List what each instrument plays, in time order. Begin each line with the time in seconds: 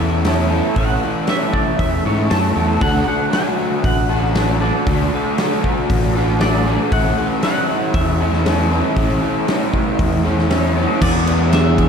Already playing: fingered electric bass E2, overdriven electric guitar A2 E3, clean electric guitar E5
0.00 overdriven electric guitar A3 C#4 E4 A4
0.25 overdriven electric guitar A3 C#4 E4 A4, snare, open hi-hat
0.50 overdriven electric guitar A3 C#4 E4 A4
0.76 fingered electric bass A1, overdriven electric guitar A2 E3 A3 C#4 E4 A4, clean electric guitar F#5, kick, open hi-hat
1.02 overdriven electric guitar A3 C#4 E4 A4
1.27 overdriven electric guitar A2 E3 A3 C#4 E4 A4, clean electric guitar E5, snare, open hi-hat
1.53 clean electric guitar D5, kick
1.79 fingered electric bass E2, clean electric guitar E5, kick, open hi-hat
2.05 fingered electric bass G#2, overdriven electric guitar A3 C#4 E4 A4, clean electric guitar C#5
2.30 fingered electric bass F#2, overdriven electric guitar A3 C#4 E4 A4, clean electric guitar A5, snare, open hi-hat
2.55 fingered electric bass E2, overdriven electric guitar A3 C#4 E4 A4
2.81 fingered electric bass D2, overdriven electric guitar D3 A3 D4 F#4 A4, clean electric guitar F#5, kick, open hi-hat
3.07 overdriven electric guitar D4 F#4 A4, clean electric guitar F#5
3.31 overdriven electric guitar D3 A3 D4 F#4 A4, clean electric guitar G#5, snare, open hi-hat
3.84 fingered electric bass A1, clean electric guitar F#5, kick, open hi-hat
4.09 overdriven electric guitar D4 F#4 A4
4.35 overdriven electric guitar A3 D4 F#4 A4, snare, open hi-hat
4.61 overdriven electric guitar D4 F#4 A4, clean electric guitar D5
4.86 fingered electric bass D2, overdriven electric guitar D3 A3 D4 F#4 A4, kick, open hi-hat
5.13 overdriven electric guitar D4 F#4 A4
5.38 overdriven electric guitar D3 A3 D4 F#4 A4, snare, open hi-hat
5.64 kick
5.90 fingered electric bass A1, kick, open hi-hat
6.15 overdriven electric guitar D4 F#4 A4
6.40 overdriven electric guitar A3 D4 F#4 A4, clean electric guitar D5, snare, open hi-hat
6.67 overdriven electric guitar D4 F#4 A4
6.92 fingered electric bass A1, overdriven electric guitar A2 E3 A3 C#4 E4 A4, clean electric guitar F#5, kick, open hi-hat
7.17 overdriven electric guitar A3 C#4 E4 A4
7.42 overdriven electric guitar A2 E3 A3 C#4 E4 A4, clean electric guitar F#5, snare, open hi-hat
7.94 fingered electric bass E2, clean electric guitar E5, kick, open hi-hat
8.20 overdriven electric guitar A3 C#4 E4 A4
8.33 snare
8.45 overdriven electric guitar A3 C#4 E4 A4, snare, open hi-hat
8.72 overdriven electric guitar A3 C#4 E4 A4
8.96 fingered electric bass A1, overdriven electric guitar A2 E3 A3 C#4 E4 A4, kick, open hi-hat
9.21 overdriven electric guitar A3 C#4 E4 A4
9.47 overdriven electric guitar A2 E3 A3 C#4 E4 A4, snare, open hi-hat
9.74 kick
9.99 fingered electric bass E2, kick, open hi-hat
10.24 overdriven electric guitar A3 C#4 E4 A4
10.39 snare
10.50 overdriven electric guitar A3 C#4 E4 A4, snare, open hi-hat
10.76 overdriven electric guitar A3 C#4 E4 A4
11.02 fingered electric bass E2, overdriven electric guitar E3 B3 D4 G#4, clean electric guitar D5, kick, crash
11.27 ride
11.53 clean electric guitar E5, snare, ride
11.78 kick, ride